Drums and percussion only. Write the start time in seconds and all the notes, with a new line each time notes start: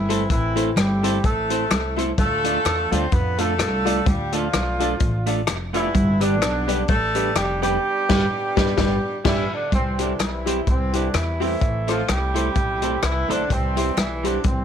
0.10 closed hi-hat
0.30 kick, closed hi-hat
0.57 closed hi-hat
0.77 cross-stick, clap, closed hi-hat
1.04 closed hi-hat
1.24 kick, closed hi-hat
1.50 closed hi-hat
1.71 cross-stick, clap, closed hi-hat
1.98 closed hi-hat
2.18 kick, closed hi-hat
2.44 closed hi-hat
2.65 cross-stick, clap, closed hi-hat
2.92 closed hi-hat
3.12 kick, closed hi-hat
3.38 closed hi-hat
3.59 cross-stick, clap, closed hi-hat
3.87 closed hi-hat
4.06 kick, closed hi-hat
4.32 closed hi-hat
4.53 cross-stick, clap, closed hi-hat
4.80 closed hi-hat
5.00 kick, closed hi-hat
5.26 closed hi-hat
5.47 cross-stick, clap, closed hi-hat
5.74 closed hi-hat
5.95 kick, closed hi-hat
6.21 closed hi-hat
6.42 cross-stick, clap, closed hi-hat
6.69 closed hi-hat
6.88 kick, closed hi-hat
7.15 closed hi-hat
7.36 cross-stick, clap, closed hi-hat
7.63 closed hi-hat
8.09 kick, snare, crash
8.57 kick, snare
8.77 kick, snare
9.25 kick, snare, crash
9.72 kick, closed hi-hat
9.99 closed hi-hat
10.20 cross-stick, clap, closed hi-hat
10.47 closed hi-hat
10.67 kick, closed hi-hat
10.93 closed hi-hat
11.14 cross-stick, clap, closed hi-hat
11.42 open hi-hat
11.61 kick, closed hi-hat
11.88 cross-stick, closed hi-hat
12.08 cross-stick, clap, closed hi-hat
12.36 closed hi-hat
12.55 kick, closed hi-hat
12.82 closed hi-hat
13.03 cross-stick, clap, closed hi-hat
13.30 closed hi-hat
13.50 kick, closed hi-hat
13.77 closed hi-hat
13.97 cross-stick, clap, closed hi-hat
14.24 closed hi-hat
14.44 kick, closed hi-hat